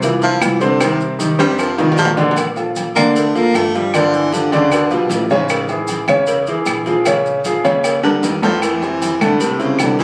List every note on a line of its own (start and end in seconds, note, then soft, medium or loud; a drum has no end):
0.00 0.38 C2 loud
0.00 0.19 E3 medium
0.00 0.19 E4 medium
0.00 0.19 F4 medium
0.00 cowbell loud
0.00 high conga soft
0.00 low conga medium
0.00 maracas medium
0.22 0.44 F3 medium
0.22 0.55 F3 medium
0.22 0.55 E4 medium
0.22 0.55 F4 medium
0.22 cowbell medium
0.22 maracas soft
0.41 1.33 C2 loud
0.41 0.62 E3 medium
0.41 cowbell medium
0.41 low timbale medium
0.41 low agogo loud
0.41 claves medium
0.41 maracas medium
0.61 0.77 C3 medium
0.61 0.83 D3 medium
0.61 0.77 C4 medium
0.61 0.77 C5 medium
0.61 cowbell medium
0.61 high conga soft
0.61 maracas soft
0.80 1.12 C3 medium
0.80 1.01 D#3 medium
0.80 1.13 C4 medium
0.80 1.13 C5 medium
0.80 cowbell loud
0.80 high conga soft
0.80 low agogo loud
0.80 claves medium
0.80 maracas medium
1.00 high conga soft
1.00 maracas soft
1.19 1.35 D#3 medium
1.19 1.35 D#4 medium
1.19 1.36 G4 medium
1.19 cowbell medium
1.19 high conga loud
1.19 low agogo medium
1.19 maracas medium
1.39 1.76 F2 loud
1.39 1.71 C3 medium
1.39 1.61 G3 loud
1.39 1.71 C4 medium
1.39 1.71 C5 medium
1.39 cowbell medium
1.39 high timbale loud
1.39 low agogo loud
1.39 maracas soft
1.52 high timbale medium
1.59 1.79 F3 medium
1.59 cowbell loud
1.59 high conga soft
1.59 low agogo loud
1.59 claves medium
1.59 maracas medium
1.78 1.97 C2 medium
1.78 1.98 D#3 medium
1.78 2.10 D#3 medium
1.78 2.10 D#4 medium
1.78 2.11 F4 medium
1.78 cowbell medium
1.78 high bongo medium
1.78 low timbale medium
1.78 maracas soft
1.92 low timbale loud
1.98 2.90 A#1 loud
1.98 2.10 F3 loud
1.98 cowbell medium
1.98 high bongo medium
1.98 high conga loud
1.98 low agogo medium
1.98 maracas medium
2.05 low timbale loud
2.17 2.33 D3 loud
2.17 2.33 D4 medium
2.17 2.33 D5 medium
2.17 low bongo loud
2.17 high conga medium
2.17 low timbale medium
2.17 low agogo loud
2.17 maracas soft
2.31 low timbale loud
2.37 cowbell loud
2.37 high conga soft
2.37 low agogo loud
2.37 claves medium
2.37 maracas medium
2.56 2.89 F3 medium
2.56 2.89 F4 medium
2.56 2.89 A4 medium
2.56 low agogo medium
2.56 maracas soft
2.76 cowbell medium
2.76 high conga medium
2.76 low agogo medium
2.76 maracas medium
2.95 3.50 D2 medium
2.95 3.28 D3 medium
2.95 3.17 A#3 loud
2.95 3.28 D4 medium
2.95 3.28 D5 medium
2.95 high conga soft
2.95 low conga medium
2.95 low agogo loud
2.95 claves medium
2.95 maracas soft
3.15 3.37 A3 medium
3.15 cowbell loud
3.15 high conga soft
3.15 maracas medium
3.35 3.67 F3 medium
3.35 3.57 A#3 loud
3.35 3.68 F4 medium
3.35 3.68 A4 medium
3.35 cowbell medium
3.35 maracas soft
3.54 4.46 G1 loud
3.54 3.77 A3 loud
3.54 cowbell medium
3.54 low timbale medium
3.54 low agogo loud
3.54 claves medium
3.54 maracas medium
3.75 3.91 F3 medium
3.75 3.96 G3 medium
3.75 3.91 F4 medium
3.75 3.91 G4 medium
3.75 cowbell medium
3.75 high conga soft
3.75 maracas soft
3.94 4.26 D3 medium
3.94 4.16 F3 medium
3.94 4.26 D4 medium
3.94 4.26 D5 medium
3.94 cowbell loud
3.94 low agogo loud
3.94 claves medium
3.94 maracas medium
4.13 4.35 E3 medium
4.13 high conga soft
4.13 maracas soft
4.32 4.53 D3 medium
4.32 4.49 F3 medium
4.32 4.49 F4 medium
4.32 4.49 G4 medium
4.32 cowbell medium
4.32 high conga medium
4.32 low agogo medium
4.32 maracas medium
4.52 4.89 D2 medium
4.52 4.73 C#3 medium
4.52 4.85 D3 medium
4.52 4.85 D4 medium
4.52 4.85 D5 medium
4.52 cowbell medium
4.52 low agogo loud
4.52 maracas soft
4.72 5.12 B2 medium
4.72 cowbell loud
4.72 high conga soft
4.72 low agogo loud
4.72 claves medium
4.72 maracas medium
4.90 5.09 B1 medium
4.90 5.23 F3 medium
4.90 5.23 F4 medium
4.90 5.23 G4 medium
4.90 cowbell medium
4.90 high conga soft
4.90 maracas soft
5.09 6.02 A1 loud
5.09 5.31 A2 medium
5.09 cowbell medium
5.09 high conga medium
5.09 low timbale medium
5.09 low agogo medium
5.09 maracas medium
5.30 5.85 G#2 medium
5.30 5.63 C#3 medium
5.30 5.63 C#4 medium
5.30 5.63 C#5 loud
5.30 high conga medium
5.30 low agogo medium
5.30 maracas soft
5.49 cowbell loud
5.49 high conga soft
5.49 low agogo loud
5.49 claves medium
5.49 maracas medium
5.68 6.02 E3 medium
5.68 6.02 E4 medium
5.68 6.02 G#4 medium
5.68 high conga soft
5.68 low agogo medium
5.68 maracas soft
5.87 cowbell medium
5.87 high conga loud
5.87 low agogo medium
5.87 maracas medium
6.08 6.63 E2 medium
6.08 6.41 C#3 medium
6.08 6.41 C#4 medium
6.08 6.41 C#5 loud
6.08 high conga soft
6.08 low conga medium
6.08 low agogo loud
6.08 claves medium
6.08 maracas soft
6.27 cowbell loud
6.27 high conga soft
6.27 low conga medium
6.27 maracas medium
6.47 6.80 E3 medium
6.47 6.80 E4 medium
6.47 6.80 G#4 medium
6.47 cowbell medium
6.47 high conga soft
6.47 maracas soft
6.66 7.58 A#1 loud
6.66 cowbell medium
6.66 low agogo loud
6.66 claves medium
6.66 maracas medium
6.86 7.03 F3 medium
6.86 7.03 F4 medium
6.86 7.03 G#4 medium
6.86 cowbell medium
6.86 high conga soft
6.86 maracas soft
7.05 7.39 C#3 medium
7.05 7.39 C#4 medium
7.05 7.39 C#5 medium
7.05 cowbell loud
7.05 high conga soft
7.05 low agogo loud
7.05 claves medium
7.05 maracas medium
7.26 high conga soft
7.26 maracas soft
7.45 7.62 F3 medium
7.45 7.62 F4 medium
7.45 7.62 G#4 medium
7.45 cowbell medium
7.45 high conga medium
7.45 low agogo medium
7.45 maracas medium
7.64 8.19 D#2 medium
7.64 7.97 C#3 medium
7.64 7.97 C#4 loud
7.64 7.97 C#5 medium
7.64 cowbell medium
7.64 high conga soft
7.64 low agogo loud
7.64 maracas soft
7.84 cowbell loud
7.84 high conga soft
7.84 low agogo loud
7.84 claves medium
7.84 maracas medium
8.03 8.26 D3 loud
8.03 8.36 G3 medium
8.03 8.36 G4 medium
8.03 8.36 A#4 medium
8.03 cowbell medium
8.03 high conga soft
8.03 high timbale loud
8.03 maracas soft
8.23 9.15 F2 loud
8.23 8.42 D#3 medium
8.23 cowbell medium
8.23 high conga loud
8.23 low timbale medium
8.23 low agogo medium
8.23 maracas medium
8.42 8.75 A2 medium
8.42 8.63 F3 loud
8.42 8.75 A3 medium
8.42 8.75 A4 medium
8.42 high conga medium
8.42 low timbale loud
8.42 low agogo medium
8.42 maracas soft
8.61 9.23 E3 loud
8.61 cowbell loud
8.61 high conga soft
8.61 low agogo loud
8.61 claves medium
8.61 maracas medium
8.82 9.14 C3 medium
8.82 9.15 C4 medium
8.82 9.14 E4 medium
8.82 high conga soft
8.82 low agogo medium
8.82 maracas soft
9.02 cowbell medium
9.02 high conga loud
9.02 low agogo medium
9.02 maracas medium
9.21 9.76 C2 medium
9.21 9.53 A2 medium
9.21 9.42 D3 medium
9.21 9.53 A3 medium
9.21 9.53 A4 medium
9.21 high conga soft
9.21 low conga medium
9.21 low agogo loud
9.21 claves medium
9.21 maracas soft
9.40 9.62 C3 medium
9.40 cowbell loud
9.40 high conga soft
9.40 low conga medium
9.40 maracas medium
9.59 9.92 C3 medium
9.59 9.83 C#3 medium
9.59 9.92 C4 medium
9.59 9.92 E4 medium
9.59 cowbell medium
9.59 high conga soft
9.59 maracas soft
9.79 10.04 C2 loud
9.79 9.99 D3 medium
9.79 cowbell medium
9.79 high conga soft
9.79 low timbale medium
9.79 low agogo loud
9.79 claves medium
9.79 maracas medium
9.99 10.04 D#3 medium
9.99 10.04 E3 loud
9.99 10.04 D#4 medium
9.99 10.04 G4 medium
9.99 cowbell medium
9.99 maracas soft